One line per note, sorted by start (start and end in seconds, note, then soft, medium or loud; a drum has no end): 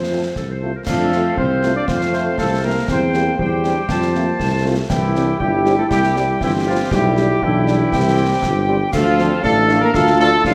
0.00 0.27 F2 soft
0.00 0.61 F3 medium
0.00 0.32 C5 medium
0.11 0.20 A3 soft
0.11 0.20 C4 soft
0.11 0.20 F4 soft
0.11 0.20 A4 soft
0.36 0.74 C2 soft
0.36 0.49 A4 soft
0.36 concert bass drum medium
0.36 snare soft
0.50 0.74 C5 medium
0.61 0.71 A3 soft
0.61 0.71 C4 soft
0.61 0.71 F4 soft
0.61 0.70 A4 soft
0.76 0.81 A#4 soft
0.87 1.29 F2 medium
0.87 1.34 A3 medium
0.87 1.10 D4 medium
0.87 1.33 A4 medium
0.87 1.34 C5 medium
0.87 1.34 F5 medium
0.87 concert bass drum medium
0.87 snare medium
0.87 crash soft
1.12 1.22 A3 medium
1.12 1.88 C4 medium
1.12 1.22 C4 soft
1.12 1.22 F4 soft
1.12 snare soft
1.36 1.79 C2 medium
1.36 1.77 C4 medium
1.36 1.72 C5 medium
1.36 1.84 C5 medium
1.36 1.84 F5 medium
1.36 concert bass drum medium
1.63 1.72 A3 medium
1.63 1.72 C4 medium
1.63 1.72 F4 medium
1.63 snare medium
1.75 1.89 D4 medium
1.75 1.87 D5 medium
1.87 2.30 F2 medium
1.87 2.88 A3 medium
1.87 2.12 C4 medium
1.87 1.99 C5 medium
1.87 2.35 C5 medium
1.87 2.35 F5 medium
1.87 concert bass drum medium
1.87 snare medium
2.01 snare soft
2.13 2.22 A3 medium
2.13 2.40 C4 medium
2.13 2.22 C4 medium
2.13 2.22 F4 soft
2.13 2.36 C5 medium
2.13 snare soft
2.38 2.80 C2 medium
2.38 2.63 A3 medium
2.38 2.62 A4 medium
2.38 2.85 C5 medium
2.38 2.85 F5 medium
2.38 concert bass drum medium
2.38 snare medium
2.64 2.73 A3 medium
2.64 2.87 A#3 medium
2.64 2.73 C4 medium
2.64 2.73 F4 soft
2.64 2.87 A#4 medium
2.88 3.31 E2 medium
2.88 3.01 G3 medium
2.88 3.36 C4 medium
2.88 3.35 C5 medium
2.88 3.37 C5 medium
2.88 3.40 G5 medium
2.88 concert bass drum medium
2.88 snare medium
3.13 3.24 G3 soft
3.13 3.38 A#3 medium
3.13 3.24 C4 medium
3.13 3.24 G4 soft
3.13 snare soft
3.38 3.81 E2 medium
3.38 4.61 G3 medium
3.38 3.65 C4 medium
3.38 4.65 G4 medium
3.38 3.87 C5 medium
3.38 3.87 G5 medium
3.38 concert bass drum medium
3.64 3.73 G3 medium
3.64 3.73 C4 medium
3.64 3.77 D4 medium
3.64 3.73 G4 medium
3.64 snare medium
3.89 4.31 F2 medium
3.89 4.12 C4 medium
3.89 4.73 C5 medium
3.89 4.73 A5 medium
3.89 concert bass drum medium
3.89 snare medium
4.02 snare medium
4.14 4.24 A3 medium
4.14 4.38 A#3 medium
4.14 4.24 C4 soft
4.14 4.24 F4 medium
4.14 snare soft
4.40 4.82 C2 medium
4.40 4.90 A3 medium
4.40 concert bass drum medium
4.40 snare medium
4.65 4.74 A3 medium
4.65 4.74 C4 medium
4.65 4.74 F4 medium
4.90 5.32 C2 medium
4.90 5.37 E3 medium
4.90 5.16 C4 medium
4.90 5.37 E4 medium
4.90 5.38 G4 medium
4.90 5.37 G5 medium
4.90 concert bass drum medium
4.90 snare medium
4.90 crash soft
5.15 5.24 G3 medium
5.15 5.24 C4 medium
5.15 5.28 D4 medium
5.15 5.24 G4 medium
5.15 snare soft
5.39 5.83 G1 medium
5.39 5.75 G3 medium
5.39 6.37 E4 medium
5.39 5.87 G4 medium
5.39 5.78 G4 medium
5.39 5.87 G5 medium
5.39 concert bass drum medium
5.65 5.75 G3 medium
5.65 5.75 C4 medium
5.65 5.75 G4 medium
5.65 snare soft
5.78 5.84 A3 medium
5.78 5.84 A4 medium
5.91 6.33 C2 medium
5.91 6.02 G3 medium
5.91 6.38 G4 medium
5.91 6.14 G4 medium
5.91 6.38 G5 medium
5.91 concert bass drum medium
5.91 snare medium
6.03 snare medium
6.16 6.25 G3 medium
6.16 6.44 G3 medium
6.16 6.25 C4 medium
6.16 6.25 G4 medium
6.16 6.28 G4 medium
6.16 snare medium
6.41 6.83 G1 medium
6.41 6.66 E3 medium
6.41 6.89 C4 medium
6.41 6.53 E4 medium
6.41 6.89 G4 medium
6.41 6.89 G5 medium
6.41 concert bass drum medium
6.41 snare medium
6.66 6.78 F3 medium
6.66 6.75 G3 medium
6.66 6.75 C4 medium
6.66 6.90 F4 medium
6.66 6.75 G4 medium
6.91 7.34 B1 medium
6.91 7.39 G3 medium
6.91 7.43 E4 medium
6.91 7.89 G4 medium
6.91 7.42 G4 loud
6.91 7.89 G5 medium
6.91 concert bass drum medium
6.91 snare medium
7.16 7.26 G3 medium
7.16 7.26 D4 medium
7.16 7.27 G4 medium
7.16 snare medium
7.42 7.85 B1 medium
7.42 8.64 E3 medium
7.42 7.93 D4 medium
7.42 8.68 E4 medium
7.42 concert bass drum medium
7.67 7.76 G3 medium
7.67 7.76 D4 medium
7.67 7.76 G4 medium
7.67 snare medium
7.92 8.34 C2 medium
7.92 8.89 C4 medium
7.92 8.90 G4 medium
7.92 8.90 G5 medium
7.92 concert bass drum medium
7.92 snare medium
8.18 8.27 G3 medium
8.18 8.27 C4 medium
8.18 8.27 G4 medium
8.42 8.85 G1 medium
8.42 concert bass drum medium
8.42 snare medium
8.68 8.77 G3 medium
8.68 8.77 C4 medium
8.68 8.77 G4 medium
8.92 9.31 D2 medium
8.92 9.45 F3 loud
8.92 9.05 A3 medium
8.92 9.40 F4 loud
8.92 9.40 A4 medium
8.92 9.43 F5 medium
8.92 concert bass drum medium
8.92 snare medium
8.92 crash medium
9.17 9.28 F3 medium
9.17 9.28 A3 medium
9.17 9.41 C4 medium
9.17 9.28 D4 medium
9.17 snare soft
9.43 9.86 A1 medium
9.43 9.81 A3 loud
9.43 9.94 D4 medium
9.43 9.78 A4 loud
9.43 9.91 A4 medium
9.43 9.91 F5 medium
9.43 concert bass drum medium
9.69 9.79 F3 medium
9.69 9.79 A3 medium
9.69 9.79 D4 medium
9.69 snare medium
9.82 9.93 A#3 loud
9.82 9.93 A#4 loud
9.94 10.36 D2 medium
9.94 10.06 A3 loud
9.94 10.41 F4 medium
9.94 10.18 A4 loud
9.94 10.31 A4 medium
9.94 10.31 F5 medium
9.94 concert bass drum medium
9.94 snare medium
10.07 snare medium
10.19 10.30 F3 medium
10.19 10.30 A3 medium
10.19 10.29 A3 medium
10.19 10.29 D4 medium
10.19 10.43 A4 loud
10.19 snare medium
10.44 10.54 A1 loud
10.44 10.54 F3 medium
10.44 10.54 D4 loud
10.44 10.54 F4 loud
10.44 10.54 A4 medium
10.44 10.54 F5 medium
10.44 concert bass drum medium
10.44 snare medium